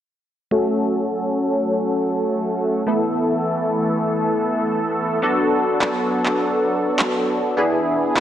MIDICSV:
0, 0, Header, 1, 4, 480
1, 0, Start_track
1, 0, Key_signature, 3, "minor"
1, 0, Tempo, 588235
1, 424, Time_signature, 4, 2, 24, 8
1, 6693, End_track
2, 0, Start_track
2, 0, Title_t, "Analog polysynth"
2, 0, Program_c, 0, 90
2, 419, Note_on_c, 0, 57, 77
2, 422, Note_on_c, 0, 61, 69
2, 425, Note_on_c, 0, 66, 70
2, 428, Note_on_c, 0, 69, 83
2, 2308, Note_off_c, 0, 57, 0
2, 2310, Note_off_c, 0, 61, 0
2, 2312, Note_off_c, 0, 66, 0
2, 2313, Note_off_c, 0, 69, 0
2, 2338, Note_on_c, 0, 57, 79
2, 2342, Note_on_c, 0, 59, 69
2, 2345, Note_on_c, 0, 64, 71
2, 2348, Note_on_c, 0, 69, 81
2, 4228, Note_off_c, 0, 57, 0
2, 4230, Note_off_c, 0, 59, 0
2, 4232, Note_off_c, 0, 64, 0
2, 4233, Note_off_c, 0, 69, 0
2, 4259, Note_on_c, 0, 59, 75
2, 4263, Note_on_c, 0, 62, 71
2, 4266, Note_on_c, 0, 66, 73
2, 4268, Note_on_c, 0, 69, 86
2, 6149, Note_off_c, 0, 59, 0
2, 6151, Note_off_c, 0, 62, 0
2, 6152, Note_off_c, 0, 66, 0
2, 6153, Note_off_c, 0, 69, 0
2, 6178, Note_on_c, 0, 59, 77
2, 6180, Note_on_c, 0, 62, 72
2, 6183, Note_on_c, 0, 64, 69
2, 6187, Note_on_c, 0, 68, 86
2, 6693, Note_off_c, 0, 59, 0
2, 6693, Note_off_c, 0, 62, 0
2, 6693, Note_off_c, 0, 64, 0
2, 6693, Note_off_c, 0, 68, 0
2, 6693, End_track
3, 0, Start_track
3, 0, Title_t, "Supersaw synth"
3, 0, Program_c, 1, 81
3, 423, Note_on_c, 1, 54, 75
3, 424, Note_on_c, 1, 57, 68
3, 424, Note_on_c, 1, 61, 69
3, 424, Note_on_c, 1, 69, 84
3, 2324, Note_off_c, 1, 54, 0
3, 2325, Note_off_c, 1, 61, 0
3, 2325, Note_off_c, 1, 69, 0
3, 2337, Note_on_c, 1, 69, 84
3, 2338, Note_on_c, 1, 52, 79
3, 2339, Note_on_c, 1, 59, 66
3, 4231, Note_off_c, 1, 57, 0
3, 4242, Note_off_c, 1, 52, 0
3, 4259, Note_on_c, 1, 62, 67
3, 4260, Note_on_c, 1, 54, 76
3, 6148, Note_off_c, 1, 69, 0
3, 6163, Note_off_c, 1, 54, 0
3, 6185, Note_on_c, 1, 68, 86
3, 6186, Note_on_c, 1, 52, 79
3, 6693, Note_off_c, 1, 52, 0
3, 6693, Note_off_c, 1, 59, 0
3, 6693, Note_off_c, 1, 62, 0
3, 6693, Note_off_c, 1, 68, 0
3, 6693, End_track
4, 0, Start_track
4, 0, Title_t, "Drums"
4, 4745, Note_on_c, 9, 39, 101
4, 4827, Note_off_c, 9, 39, 0
4, 5104, Note_on_c, 9, 39, 67
4, 5186, Note_off_c, 9, 39, 0
4, 5704, Note_on_c, 9, 39, 114
4, 5786, Note_off_c, 9, 39, 0
4, 6664, Note_on_c, 9, 39, 102
4, 6693, Note_off_c, 9, 39, 0
4, 6693, End_track
0, 0, End_of_file